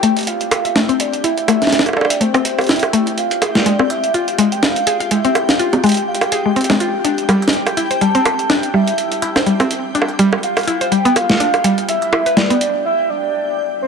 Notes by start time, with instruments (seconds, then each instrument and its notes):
Already playing: synth texture G4 G5, soft synth lead G5
0.03 synth arpeggio sound A3, closed hi-hat
0.17 closed hi-hat
0.19 closed hi-hat
0.21 closed hi-hat
0.23 closed hi-hat
0.25 closed hi-hat
0.27 soft synth lead F5, closed hi-hat
0.41 closed hi-hat
0.51 synth arpeggio sound A4, closed hi-hat, high bongo
0.65 synth arpeggio sound E5, closed hi-hat
0.76 synth arpeggio sound A3, soft synth lead E5, snare, closed hi-hat
0.89 synth arpeggio sound C4, closed hi-hat
1.00 soft synth lead D5, closed hi-hat
1.13 closed hi-hat
1.24 synth arpeggio sound E4, soft synth lead E5, closed hi-hat
1.38 closed hi-hat
1.48 synth arpeggio sound A3, closed hi-hat, high bongo
1.62 snare, closed hi-hat
1.67 snare
1.72 snare, closed hi-hat
1.79 snare
1.86 closed hi-hat, high bongo
1.89 high bongo
1.93 synth arpeggio sound A4, high bongo
1.97 soft synth lead D5, high bongo
2.01 high bongo
2.05 high bongo
2.10 synth arpeggio sound E5, closed hi-hat
2.21 synth arpeggio sound A3, soft synth lead C5, closed hi-hat
2.34 synth arpeggio sound C4, closed hi-hat, high bongo
2.45 closed hi-hat
2.59 closed hi-hat, high bongo
2.61 closed hi-hat
2.64 closed hi-hat
2.67 synth arpeggio sound E4, soft synth lead E5, snare, closed hi-hat
2.69 closed hi-hat
2.73 closed hi-hat
2.76 closed hi-hat
2.79 closed hi-hat
2.83 closed hi-hat, high bongo
2.93 synth arpeggio sound A3, closed hi-hat
3.07 closed hi-hat
3.18 soft synth lead F5, closed hi-hat
3.31 closed hi-hat
3.42 synth arpeggio sound G#4, closed hi-hat, high bongo
3.48 soft synth lead E5
3.55 soft synth lead D5, synth arpeggio sound F5, snare, closed hi-hat
3.66 synth arpeggio sound G#3, closed hi-hat
3.79 synth arpeggio sound C4, high bongo
3.90 soft synth lead E5, closed hi-hat
4.04 closed hi-hat
4.14 synth arpeggio sound F4, soft synth lead F5, closed hi-hat
4.28 closed hi-hat
4.38 synth arpeggio sound G#3, closed hi-hat
4.52 soft synth lead G5, closed hi-hat
4.63 soft synth lead F5, snare, closed hi-hat
4.76 closed hi-hat
4.87 synth arpeggio sound G#4, closed hi-hat
5.00 synth arpeggio sound F5, closed hi-hat
5.11 synth arpeggio sound G#3, soft synth lead E5, closed hi-hat
5.25 synth arpeggio sound C4, closed hi-hat
5.35 closed hi-hat, high bongo
5.49 soft synth lead F5, snare, closed hi-hat
5.59 synth arpeggio sound F4, closed hi-hat
5.73 closed hi-hat, high bongo
5.84 synth arpeggio sound G#3, soft synth lead G5, closed hi-hat
5.86 closed hi-hat
5.89 closed hi-hat
5.92 closed hi-hat
5.94 closed hi-hat
5.97 closed hi-hat
6.08 soft synth lead F5
6.15 closed hi-hat
6.21 closed hi-hat, high bongo
6.32 synth arpeggio sound G#4, closed hi-hat
6.46 synth arpeggio sound G#3
6.56 synth arpeggio sound C4, closed hi-hat
6.61 closed hi-hat
6.64 closed hi-hat
6.70 synth arpeggio sound G#3, snare, closed hi-hat, high bongo
6.80 synth arpeggio sound F4, closed hi-hat
7.04 synth arpeggio sound D4, closed hi-hat
7.18 closed hi-hat
7.29 synth arpeggio sound G3, closed hi-hat, high bongo
7.42 closed hi-hat
7.48 snare
7.53 soft synth lead G5, closed hi-hat
7.67 closed hi-hat, high bongo
7.77 synth arpeggio sound E4, closed hi-hat
7.91 synth arpeggio sound C5, closed hi-hat
8.01 synth arpeggio sound G3, soft synth lead A5, closed hi-hat
8.15 synth arpeggio sound C4, closed hi-hat
8.26 closed hi-hat, high bongo
8.39 closed hi-hat
8.50 synth arpeggio sound D4, soft synth lead G5, snare, closed hi-hat
8.63 closed hi-hat
8.74 synth arpeggio sound G3, soft synth lead E5
8.88 closed hi-hat
8.98 closed hi-hat
9.12 closed hi-hat
9.22 synth arpeggio sound E4, closed hi-hat
9.36 synth arpeggio sound C5, snare, closed hi-hat, high bongo
9.46 synth arpeggio sound G3, closed hi-hat
9.60 synth arpeggio sound C4, closed hi-hat, high bongo
9.71 closed hi-hat
9.95 synth arpeggio sound D4, closed hi-hat
10.02 high bongo
10.08 closed hi-hat
10.19 synth arpeggio sound G3, closed hi-hat
10.33 high bongo
10.43 soft synth lead F5, closed hi-hat
10.57 closed hi-hat, high bongo
10.59 closed hi-hat
10.61 closed hi-hat
10.63 closed hi-hat
10.65 synth arpeggio sound E4, closed hi-hat
10.68 closed hi-hat
10.81 synth arpeggio sound C5, closed hi-hat
10.92 synth arpeggio sound G3, soft synth lead G5, closed hi-hat
11.05 synth arpeggio sound B3, closed hi-hat
11.16 soft synth lead F5, closed hi-hat, high bongo
11.30 snare
11.40 synth arpeggio sound D4, closed hi-hat
11.54 closed hi-hat, high bongo
11.64 synth arpeggio sound G3, closed hi-hat
11.78 closed hi-hat
11.89 soft synth lead E5, closed hi-hat
12.02 closed hi-hat
12.13 synth arpeggio sound E4, high bongo
12.26 synth arpeggio sound B4, closed hi-hat
12.37 synth arpeggio sound G3, soft synth lead D5, snare, closed hi-hat
12.50 synth arpeggio sound B3, closed hi-hat
12.61 closed hi-hat
12.85 soft synth lead E5
13.10 soft synth lead D5
13.82 soft synth lead C5